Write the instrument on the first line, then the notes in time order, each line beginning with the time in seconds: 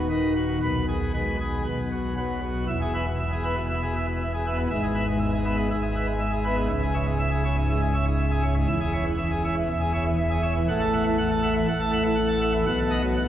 pipe organ
Already playing: D#1 D#2
0.10 D#3 B4
0.36 F#4
0.62 B1 B2 B4
0.88 G#4
1.14 G#3 B4
1.40 G#4
1.66 B1 B2 B4
1.92 F#4
2.17 F#3 B4
2.43 F#4
2.67 E1 E2 E5
2.81 G#4
2.94 B4 E5
3.07 B2
3.19 E5
3.32 G#4
3.44 B3 B4 E5
3.57 B2
3.70 B2 E5
3.82 G#4
3.96 B4 E5
4.08 B2
4.21 E5
4.34 G#4
4.47 B3 B4 E5
4.59 B2
4.70 G#1 G#2 E5
4.83 G#4
4.94 B4 E5
5.07 G#3
5.19 E5
5.33 G#4
5.45 B3 B4 E5
5.57 G#3
5.70 G#1 G#2 E5
5.82 G#4
5.96 B4 E5
6.07 G#3
6.20 E5
6.32 G#4
6.45 B3 B4 E5
6.57 G#3
6.69 C#1 C#2 E5
6.82 G#4
6.94 C#5 E5
7.06 G#2
7.19 E5
7.31 G#4
7.44 C#5 E5
7.57 G#2
7.69 G#2 E5
7.81 G#4
7.94 C#5 E5
8.07 G#2
8.19 E5
8.31 G#4
8.43 C#5 E5
8.56 G#2
8.68 E1 E2 E5
8.81 G#4
8.93 C#5 E5
9.05 E3
9.18 E5
9.31 G#4
9.44 C#5 E5
9.57 E3
9.69 E1 E2 E5
9.80 G#4
9.93 C#5 E5
10.06 E3
10.18 E5
10.31 G#4
10.42 C#5 E5
10.56 E3
10.68 A1 A2 F#5
10.80 A4
10.93 E5 F#5
11.06 E3
11.18 F#5
11.30 A4
11.43 E5 F#5
11.56 E3
11.68 A1 A2 F#5
11.80 A4
11.92 E5 F#5
12.04 E3
12.15 F#5
12.28 A4
12.41 E5 F#5
12.53 E3
12.66 B1 B2 F#5
12.79 A4
12.90 D#5 F#5
13.04 F#3
13.16 F#5